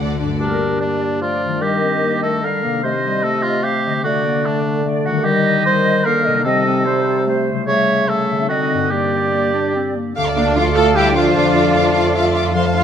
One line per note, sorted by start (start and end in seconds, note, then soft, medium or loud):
0.00 0.35 D2 soft
0.00 0.35 D3 soft
0.00 0.42 D3 soft
0.00 0.42 A3 soft
0.00 0.19 A3 soft
0.00 0.19 D4 soft
0.00 0.18 D4 soft
0.00 0.42 A4 soft
0.00 0.20 A4 soft
0.00 2.86 D5 soft
0.00 0.20 D5 soft
0.00 0.19 F#5 soft
0.20 1.55 G2 soft
0.20 0.40 A3 soft
0.20 0.40 D4 soft
0.20 0.30 D4 soft
0.20 0.41 A4 soft
0.20 0.40 D5 soft
0.27 1.48 G3 soft
0.32 1.52 D4 soft
0.36 0.78 D4 medium
0.36 1.57 A#4 soft
0.40 1.18 G3 medium
0.40 0.78 A#3 soft
0.40 0.79 A#4 soft
0.81 1.24 A#3 soft
0.81 1.21 D4 medium
0.81 1.20 D5 soft
1.21 1.63 F3 soft
1.21 1.64 A3 soft
1.21 1.63 F4 medium
1.21 1.61 D5 soft
1.45 2.77 D#3 soft
1.49 2.79 G3 soft
1.54 2.81 D4 soft
1.58 2.42 D#3 medium
1.58 2.22 G4 medium
1.58 2.83 A#4 soft
1.62 1.84 G3 soft
1.62 2.44 D#5 medium
1.82 2.05 C4 soft
2.04 2.25 A#3 soft
2.23 2.45 A3 soft
2.23 2.46 A4 medium
2.43 2.83 D3 soft
2.43 2.65 G3 soft
2.43 2.82 A#4 medium
2.43 2.84 F5 soft
2.63 3.97 C3 soft
2.63 2.84 A#3 soft
2.70 3.90 A3 soft
2.75 4.02 D#4 soft
2.79 3.99 C5 soft
2.83 4.03 C3 soft
2.83 2.93 A3 soft
2.83 3.25 C5 medium
2.83 3.65 D#5 medium
3.03 3.26 G3 medium
3.23 4.04 A3 soft
3.23 3.44 A4 medium
3.43 3.65 F4 medium
3.63 4.03 G4 medium
3.63 3.85 F5 soft
3.86 5.18 D3 soft
3.86 3.92 D#5 medium
3.91 5.20 A3 soft
3.96 5.22 D4 soft
4.00 4.47 F#4 medium
4.00 5.25 C5 soft
4.04 5.26 D3 medium
4.04 4.26 A3 medium
4.04 4.61 D5 medium
4.25 4.47 A#3 soft
4.45 4.84 A3 medium
4.45 4.86 D4 medium
4.85 5.27 A3 medium
4.85 5.05 D5 medium
5.05 6.38 D#3 soft
5.05 5.26 F#4 medium
5.05 5.26 F#5 medium
5.12 6.31 G3 soft
5.16 8.47 G4 soft
5.21 6.06 D#3 medium
5.21 5.65 G4 medium
5.21 6.45 A#4 soft
5.25 5.65 G3 medium
5.25 6.06 D#5 medium
5.65 6.05 G3 medium
5.65 6.06 C5 medium
6.05 6.45 D3 medium
6.05 6.47 A#3 medium
6.05 6.44 A#4 medium
6.05 6.25 F5 medium
6.25 7.60 C3 medium
6.25 6.43 D#5 medium
6.32 7.53 G3 soft
6.37 7.65 D#4 soft
6.41 7.62 A4 soft
6.41 7.24 A4 medium
6.41 6.84 D#5 medium
6.45 7.50 C3 medium
6.45 6.65 C4 medium
6.65 6.87 C4 medium
6.85 7.28 G3 medium
6.85 7.26 C5 medium
7.27 7.67 A3 medium
7.27 7.67 C5 medium
7.49 8.42 C#3 soft
7.54 8.45 G3 soft
7.58 8.47 E4 soft
7.63 8.44 A4 soft
7.67 8.51 C#3 medium
7.67 8.06 A3 medium
7.67 8.10 C#5 loud
7.67 8.06 E5 medium
8.08 8.51 A3 medium
8.08 8.48 A4 medium
8.08 8.49 E5 medium
8.32 8.84 D3 soft
8.36 8.86 C4 soft
8.41 8.89 D#4 soft
8.45 8.91 D3 medium
8.45 8.92 C4 soft
8.45 8.92 F#4 medium
8.45 8.91 A4 soft
8.45 8.91 D#5 medium
8.74 10.09 G2 soft
8.78 10.11 A#3 soft
8.83 12.52 D4 soft
8.87 9.29 A#3 soft
8.87 10.16 G4 soft
8.87 9.96 G4 medium
8.91 9.94 G3 medium
8.91 9.96 D5 medium
9.32 9.55 A#3 medium
9.54 9.74 D4 medium
9.75 9.97 C4 medium
9.96 10.15 A#3 soft
10.16 11.32 D2 medium
10.16 11.37 D3 medium
10.16 11.32 A3 medium
10.16 10.26 A4 soft
10.16 11.18 F5 medium
10.16 10.26 F5 medium
10.16 10.26 D6 medium
10.27 10.37 D5 soft
10.27 10.37 A5 soft
10.36 10.45 D3 medium
10.36 11.54 A3 soft
10.36 10.44 A#3 medium
10.36 10.55 D4 medium
10.36 10.47 A4 soft
10.36 10.55 D5 medium
10.36 10.47 F5 soft
10.36 10.47 D6 soft
10.47 10.57 D5 soft
10.47 10.57 A5 soft
10.56 10.65 F3 medium
10.56 10.64 D4 medium
10.56 10.76 F4 medium
10.56 11.15 F4 soft
10.56 10.78 F4 medium
10.56 10.66 A4 soft
10.56 10.63 F5 medium
10.56 10.66 F5 soft
10.56 10.65 D6 soft
10.65 10.76 D5 soft
10.65 10.76 A5 soft
10.75 10.96 A3 medium
10.75 10.83 F4 medium
10.75 10.95 A4 medium
10.75 10.97 A4 medium
10.75 10.86 A4 soft
10.75 11.94 D5 medium
10.75 10.86 F5 soft
10.75 10.95 A5 medium
10.75 10.86 D6 soft
10.85 10.96 D5 soft
10.85 10.95 A5 soft
10.95 11.15 G3 medium
10.95 11.15 E4 medium
10.95 11.14 G4 medium
10.95 11.15 G4 medium
10.95 12.14 A4 soft
10.95 11.06 A4 soft
10.95 11.06 F5 soft
10.95 11.16 G5 medium
10.95 11.05 D6 medium
11.06 11.17 D5 soft
11.06 11.16 A5 soft
11.15 12.54 F3 medium
11.15 12.51 D4 medium
11.15 12.51 F4 medium
11.15 11.26 A4 soft
11.15 12.54 F5 medium
11.15 11.26 F5 soft
11.15 11.26 D6 medium
11.26 11.36 D5 soft
11.26 11.36 A5 soft
11.35 12.84 F2 medium
11.35 12.53 F3 medium
11.35 12.52 A3 medium
11.35 11.45 A4 medium
11.35 12.16 D5 medium
11.35 11.45 F5 soft
11.35 11.45 D6 soft
11.46 11.56 D5 soft
11.46 11.56 A5 soft
11.55 12.73 A3 soft
11.55 11.65 A4 medium
11.55 11.65 F5 medium
11.55 11.65 D6 soft
11.65 11.75 D5 soft
11.65 11.75 A5 medium
11.75 12.34 F4 medium
11.75 11.84 A4 soft
11.75 11.84 F5 soft
11.75 11.84 D6 soft
11.84 11.95 D5 soft
11.84 11.95 A5 soft
11.94 12.05 A4 medium
11.94 12.56 D5 soft
11.94 12.04 F5 soft
11.94 12.05 D6 soft
12.04 12.14 D5 soft
12.04 12.15 A5 soft
12.14 12.24 A4 soft
12.14 12.84 A4 soft
12.14 12.54 E5 medium
12.14 12.24 F5 soft
12.14 12.24 D6 soft
12.25 12.35 D5 soft
12.25 12.35 A5 soft
12.35 12.45 A4 soft
12.35 12.45 F5 soft
12.35 12.45 D6 medium
12.45 12.55 D5 medium
12.45 12.54 A5 medium
12.54 12.84 F3 medium
12.54 12.84 A3 medium
12.54 12.64 C5 medium
12.54 12.84 F5 medium
12.54 12.64 F5 soft
12.54 12.63 C6 medium
12.65 12.74 C5 soft
12.65 12.73 F5 soft
12.65 12.74 A5 medium
12.74 12.84 F3 medium
12.74 12.84 A3 soft
12.74 12.84 D4 medium
12.74 12.84 F4 medium
12.74 12.84 C5 medium
12.74 12.84 F5 medium
12.74 12.83 F5 medium
12.74 12.84 C6 soft